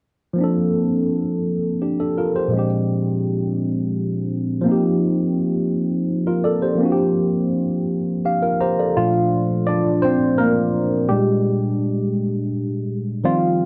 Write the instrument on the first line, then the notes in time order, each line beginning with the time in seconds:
tine electric piano
0.33 F3 A#3
0.39 C4 D4
0.44 A4
1.82 D4 G4
2.00 D4 A4
2.18 F4 A#4
2.36 G4 C5
2.48 A#2 F3
2.52 G#3 C4
2.57 D4 G4
4.61 F3 A#3
4.66 C4 D#4
4.71 G4
6.27 F4 A#4
6.44 A4 D5
6.62 G4 C5
6.75 F3 A#3
6.81 C4 D4
6.85 F#4
6.92 G4
8.25 D4 G4 F5
8.42 F4 A#4
8.61 G4 C5 A#5
8.79 A4 D5
8.97 A#2 F3 A3 D4 F4
9.67 D4 D5
10.02 C4 C5
10.38 A#3 A#4
11.09 A#2 G3 G#3 D4 G4
13.24 D#3 F3 G3 C4 F4